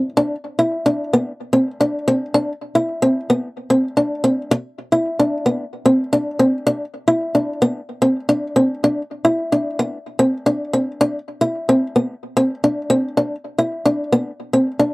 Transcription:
0.17 0.35 D4 medium
0.59 0.76 E4 medium
0.86 1.03 D4 medium
1.13 1.31 B3 medium
1.53 1.70 C4 medium
1.81 1.98 D4 medium
2.08 2.25 C4 medium
2.34 2.52 D4 medium
2.75 2.93 E4 medium
3.02 3.20 C4 medium
3.30 3.47 B3 medium
3.70 3.87 C4 medium
3.97 4.14 D4 medium
4.24 4.41 C4 medium
4.51 muted steel-string acoustic guitar stroke medium
4.92 5.09 E4 medium
5.19 5.37 D4 medium
5.46 5.63 B3 medium
5.86 6.03 C4 medium
6.13 6.30 D4 medium
6.39 6.57 C4 medium
6.67 6.84 D4 medium
7.08 7.25 E4 medium
7.35 7.52 D4 medium
7.62 7.79 B3 medium
8.02 8.19 C4 medium
8.29 8.47 D4 medium
8.56 8.74 C4 medium
8.84 9.01 D4 medium
9.25 9.42 E4 medium
9.52 9.70 D4 medium
9.79 9.97 B3 medium
10.19 10.37 C4 medium
10.46 10.64 D4 medium
10.73 10.91 C4 medium
11.01 11.18 D4 loud
11.41 11.59 E4 medium
11.69 11.86 C4 medium
11.96 12.13 B3 medium
12.37 12.54 C4 medium
12.64 12.81 D4 medium
12.90 13.08 C4 medium
13.17 13.35 D4 medium
13.58 13.76 E4 medium
13.85 14.03 D4 medium
14.12 14.30 B3 medium
14.53 14.71 C4 medium
14.79 14.94 D4 medium

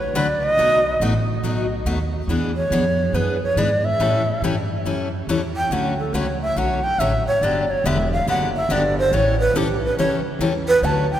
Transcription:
0.00 0.12 D2 medium
0.00 0.17 C#5 medium
0.14 0.56 C#2 medium
0.14 0.26 D3 medium
0.14 0.26 F#3 medium
0.14 0.26 A3 medium
0.14 0.26 D4 medium
0.14 0.26 F#4 medium
0.14 0.27 B4 medium
0.14 0.45 D5 medium
0.43 1.01 D#5 loud
0.57 0.99 B1 medium
0.57 0.79 B2 medium
0.57 0.79 F#3 medium
0.57 0.79 A3 medium
0.57 0.80 D#4 medium
0.57 0.80 F#4 medium
1.00 1.42 A1 medium
1.00 1.12 B2 medium
1.00 1.12 F#3 medium
1.00 1.12 A3 medium
1.00 1.13 D#4 medium
1.00 1.13 F#4 medium
1.43 1.84 B1 medium
1.43 1.65 B2 medium
1.43 1.65 F#3 medium
1.43 1.65 A3 medium
1.43 1.65 D#4 medium
1.43 1.65 F#4 medium
1.85 2.27 D#2 medium
1.85 1.97 B2 medium
1.85 1.97 F#3 medium
1.85 1.97 A3 medium
1.85 1.98 D#4 medium
1.85 1.98 F#4 medium
2.27 2.70 E2 medium
2.27 2.50 E3 medium
2.27 2.51 B3 medium
2.27 2.51 D4 medium
2.27 2.51 G#4 medium
2.56 3.16 C#5 medium
2.70 3.12 F2 loud
2.70 2.83 E3 medium
2.70 2.83 B3 medium
2.70 2.84 D4 medium
2.70 2.84 G#4 medium
3.13 3.55 F#2 medium
3.13 3.36 E3 medium
3.13 3.36 B3 medium
3.13 3.36 D4 medium
3.13 3.36 G#4 medium
3.13 3.42 B4 medium
3.43 3.60 C#5 medium
3.56 3.98 G#2 medium
3.56 3.69 E3 medium
3.56 3.69 B3 medium
3.56 3.69 D4 medium
3.56 3.69 G#4 medium
3.56 3.86 D5 medium
3.85 4.43 E5 loud
3.99 4.41 A2 medium
3.99 4.21 E3 medium
3.99 4.21 G3 medium
3.99 4.22 C#4 medium
3.99 4.22 E4 medium
3.99 4.22 A4 medium
4.42 4.84 G2 medium
4.42 4.55 E3 medium
4.42 4.55 G3 medium
4.42 4.55 C#4 medium
4.42 4.55 E4 medium
4.42 4.55 A4 medium
4.85 5.26 F#2 medium
4.85 5.07 E3 medium
4.85 5.07 G3 soft
4.85 5.07 C#4 medium
4.85 5.07 E4 medium
4.85 5.08 A4 medium
5.27 5.69 E2 medium
5.27 5.40 E3 medium
5.27 5.40 G3 medium
5.27 5.40 C#4 medium
5.27 5.40 E4 medium
5.27 5.40 A4 medium
5.57 5.74 G5 medium
5.70 6.12 D2 medium
5.70 5.92 D3 medium
5.70 5.93 F#3 medium
5.70 5.93 A3 medium
5.70 5.93 C#4 medium
5.70 5.93 F#4 medium
5.70 5.99 F#5 medium
5.99 6.16 A4 soft
6.13 6.55 C#2 medium
6.13 6.25 D3 medium
6.13 6.25 F#3 medium
6.13 6.26 A3 medium
6.13 6.26 C#4 medium
6.13 6.26 F#4 medium
6.13 6.41 C#5 medium
6.42 6.59 E5 medium
6.56 6.98 B1 medium
6.56 6.78 D3 medium
6.56 6.78 F#3 medium
6.56 6.78 A3 medium
6.56 6.79 C#4 medium
6.56 6.79 F#4 medium
6.56 6.85 F#5 medium
6.84 7.01 G5 loud
6.98 7.24 A1 medium
6.98 7.11 D3 medium
6.98 7.11 F#3 medium
6.98 7.11 A3 medium
6.98 7.12 C#4 medium
6.98 7.12 F#4 medium
6.98 7.26 E5 medium
7.25 7.45 C#5 loud
7.25 muted upright bass stroke soft
7.41 7.83 G1 medium
7.41 7.64 D3 medium
7.41 7.64 F#3 medium
7.41 7.64 B3 medium
7.41 7.64 D4 medium
7.41 7.64 G4 medium
7.41 7.72 D5 medium
7.70 7.88 C#5 medium
7.84 8.26 E1 medium
7.84 7.96 D3 medium
7.84 7.96 F#3 medium
7.84 7.97 B3 medium
7.84 7.97 D4 medium
7.84 7.97 G4 medium
7.84 8.12 E5 medium
8.13 8.27 F5 medium
8.26 8.68 F#1 medium
8.26 8.49 D3 medium
8.26 8.49 F#3 medium
8.26 8.49 B3 medium
8.26 8.49 D4 medium
8.26 8.49 G4 medium
8.26 8.45 F#5 medium
8.56 8.74 E5 medium
8.69 9.11 G1 medium
8.69 8.81 D3 medium
8.69 8.81 F#3 medium
8.69 8.82 B3 medium
8.69 8.82 D4 medium
8.69 8.82 G4 medium
8.69 8.98 D5 medium
8.98 9.15 C5 loud
9.11 9.53 A1 medium
9.11 9.34 E3 medium
9.11 9.34 G3 medium
9.11 9.34 C#4 medium
9.11 9.35 E4 medium
9.11 9.35 A4 medium
9.11 9.40 C#5 medium
9.40 9.58 B4 loud
9.54 9.96 B1 medium
9.54 9.67 E3 medium
9.54 9.67 G3 medium
9.54 9.67 C#4 medium
9.54 9.67 E4 medium
9.54 9.83 G4 medium
9.54 9.67 A4 loud
9.83 9.97 B4 medium
9.97 10.38 C#2 medium
9.97 10.20 E3 medium
9.97 10.20 G3 medium
9.97 10.20 C#4 medium
9.97 10.20 E4 medium
9.97 10.20 A4 medium
9.97 10.15 C#5 medium
10.39 10.81 E2 medium
10.39 10.52 E3 medium
10.39 10.52 G3 medium
10.39 10.52 C#4 medium
10.39 10.52 E4 medium
10.39 10.53 A4 medium
10.68 10.86 B4 loud
10.82 11.20 D2 medium
10.82 11.05 D3 medium
10.82 11.05 F#3 medium
10.82 11.05 A3 medium
10.82 11.05 C#4 medium
10.82 11.05 F#4 medium
10.82 11.11 A5 medium
11.12 11.20 G5 medium

